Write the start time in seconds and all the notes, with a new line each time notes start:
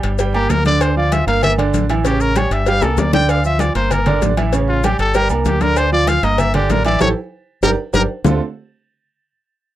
Already playing: G3 G4 G5
0.03 G1, cowbell, low agogo, maracas
0.19 G3 G4 G5, cowbell, high conga, maracas
0.34 A#3 G4 A#4 A#5, high conga, low agogo
0.50 D2 A#4, cowbell, high conga, low timbale, low agogo, maracas
0.65 D3 D4 D5, cowbell, high conga, maracas
0.81 C5, cowbell, high conga, low agogo, maracas
0.96 F3 F4 D5 F5, high conga
1.12 E5, cowbell, high conga, low agogo, maracas
1.27 G1 A#3 A#4 F5 A#5, cowbell, maracas
1.43 E5, cowbell, high conga, low conga, low agogo, maracas
1.58 D3 D4 D5, cowbell, high conga, low agogo
1.74 A1, cowbell, high conga, maracas
1.90 E3 E4 E5, cowbell, high conga, low agogo, maracas
2.05 C#3 C#4 G4 C#5, cowbell, low agogo, maracas
2.20 A#4, high conga, maracas
2.36 G3 G4 C#5 G5, cowbell, high conga, low agogo, maracas
2.51 G1 E5, cowbell, low agogo, maracas
2.66 G3 G4 F5 G5, cowbell, high conga, maracas
2.81 C2 A#3 A4 A#4 A#5, high bongo, high conga, low agogo, maracas
2.97 D2 D5, cowbell, high bongo, high conga, low timbale, low agogo, maracas
3.13 D3 D4 D5 G5, cowbell, low bongo, high conga, maracas
3.29 F5, cowbell, high conga, low agogo, maracas
3.44 F3 F4 E5 F5, high conga, maracas
3.59 D5, cowbell, high conga, low agogo, maracas
3.75 G1 A#3 A#4 C5 A#5, cowbell, maracas
3.91 A#4, cowbell, high conga, low conga, low agogo, maracas
4.06 D3 D4 D5, cowbell, high conga, low conga, low agogo
4.21 A1, cowbell, high conga, low timbale, maracas
4.37 E3 E4 E5, cowbell, high conga, low agogo, maracas
4.53 C#3 C#4 C#5, cowbell, low agogo, maracas
4.69 F4, high conga
4.83 G3 G4 G5, cowbell, high conga, low agogo, maracas
4.98 G1 A4, cowbell, low agogo, maracas
5.14 G3 G4 A#4 G5, cowbell, high conga, maracas
5.29 C2 A#3 D4 A#4 A#5, high conga, low agogo, maracas
5.45 D2 G4, cowbell, high conga, low timbale, low agogo, maracas
5.61 D3 D4 A#4 D5, cowbell, high conga, maracas
5.76 C5, cowbell, low agogo, maracas
5.92 F3 F4 D5 F5, high conga
6.07 F5, cowbell, high conga, low agogo, maracas
6.23 G1 A#3 A#4 D#5 A#5, cowbell, maracas
6.38 E5, cowbell, high conga, low conga, low agogo, maracas
6.54 D3 D4 G4 D5, cowbell, high conga, low conga, low agogo
6.69 A1 A#4, cowbell, high conga, low timbale, maracas
6.85 E3 E4 D5 E5, cowbell, high conga, low agogo, maracas
7.00 A1 E4 G4 A4 C#5, cowbell, high conga, high timbale, maracas
7.62 G1 D4 G4 A#4, cowbell, high conga, high timbale, maracas
7.93 G1 D4 G4 A#4, cowbell, high conga, high timbale, maracas
8.24 D2 D3 A3 C4 D4 F4 A4, low bongo, low conga, low timbale, maracas